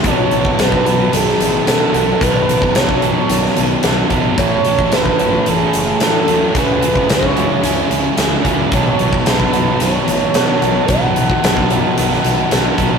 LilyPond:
<<
  \new Staff \with { instrumentName = "Soft synth lead" } { \time 4/4 \key b \mixolydian \tempo 4 = 111 cis''4 b'4 gis'4 a'4 | b'4 cis''2~ cis''8 r8 | cis''4 b'4 gis'4 a'4 | b'4 cis''2~ cis''8 r8 |
cis''4 b'4 cis''2 | fis''2 fis''4. r8 | }
  \new Staff \with { instrumentName = "Overdriven electric guitar" } { \time 4/4 \key b \mixolydian <b, dis fis b dis' a'>8 <fis b dis' a'>8 <fis b dis' a'>8 <fis b dis' a'>8 <b, dis fis b dis' a'>4 <fis b dis' a'>8 <fis b dis' a'>8 | <b, dis fis b dis' a'>8 <fis b dis' a'>8 <fis b dis' a'>8 <fis b dis' a'>8 <b, dis fis b dis' a'>4 <fis b dis' a'>8 <fis b dis' a'>8 | <a, e a cis' e' a'>8 <a cis' e' a'>8 <a cis' e' a'>8 <a cis' e' a'>8 <a, e a cis' e' a'>4 <a cis' e' a'>8 <a cis' e' a'>8 | <cis gis cis' e' gis'>8 <cis' e' gis'>8 <gis cis' e' gis'>8 <cis' e' gis'>8 <cis gis cis' e' gis'>4 <gis cis' e' gis'>8 <cis' e' gis'>8 |
<b, dis fis b dis' a'>8 <fis b dis' a'>8 <fis b dis' a'>8 <fis b dis' a'>8 <b, dis fis b dis' a'>4 <fis b dis' a'>8 <fis b dis' a'>8 | <b, dis fis b dis' a'>8 <fis b dis' a'>8 <fis b dis' a'>8 <fis b dis' a'>8 <b, dis fis b dis' a'>4 <fis b dis' a'>8 <fis b dis' a'>8 | }
  \new Staff \with { instrumentName = "Distorted electric guitar" } { \clef bass \time 4/4 \key b \mixolydian <b, fis b>8 <fis b>8 <b, fis b>8 <fis b>8 <b, fis b>8 <fis b>8 <b, fis b>8 <fis b>8 | <b, fis b>8 <fis b>8 <b, fis b>8 <fis b>8 <b, fis b>8 <fis b>8 <b, fis b>8 <fis b>8 | <a, e a>8 <e a>8 <a, e a>8 <e a>8 <a, e a>8 <e a>8 <a, e a>8 <e a>8 | <cis gis cis'>8 <gis cis'>8 <cis gis cis'>8 <gis cis'>8 <cis gis cis'>8 <gis cis'>8 <cis gis cis'>8 <gis cis'>8 |
<b, fis b>8 <fis b>8 <b, fis b>8 <fis b>8 <b, fis b>8 <fis b>8 <b, fis b>8 <fis b>8 | <b, fis b>8 <fis b>8 <b, fis b>8 <fis b>8 <b, fis b>8 <fis b>8 <b, fis b>8 <fis b>8 | }
  \new Staff \with { instrumentName = "Fingered electric bass" } { \clef bass \time 4/4 \key b \mixolydian b,,8 b,,8 b,,8 b,,8 b,,8 a,,8 b,8 b,,8 | b,,4 b,,4 b,,8 b,,8 b,,8 b,,8 | a,,8 a,,8 a,,8 a,,8 a,,8 fis,,8 a,8 dis,8 | cis,4 cis,4 cis,8 cis,8 cis,8 cis,8 |
b,,8 b,,8 b,,8 b,,8 b,,8 a,,8 b,8 b,,8 | b,,4 b,,4 b,,8 b,,8 b,,8 b,,8 | }
  \new DrumStaff \with { instrumentName = "Drums" } \drummode { \time 4/4 <hh bd>8 hh16 bd16 <hh sn>16 bd16 hh8 hh16 sn16 hh8 <hh sn>8 hh8 | <hh bd>8 hh16 bd16 <hh sn>16 bd16 hh8 hh16 sn16 hh8 <hh sn>8 <hh bd>8 | <hh bd>8 hh16 bd16 <hh sn>16 bd16 hh8 hh8 hh8 <hh sn>8 hh8 | <hh bd>8 hh16 bd16 <hh sn>16 bd16 hh8 hh8 hh8 <hh sn>8 <hh bd>8 |
<hh bd>8 hh16 bd16 <hh sn>16 bd16 hh8 hh8 hh8 <hh sn>8 hh8 | <hh bd>8 hh16 bd16 <hh sn>16 bd16 hh8 hh16 sn16 hh8 <hh sn>8 <hh bd>8 | }
>>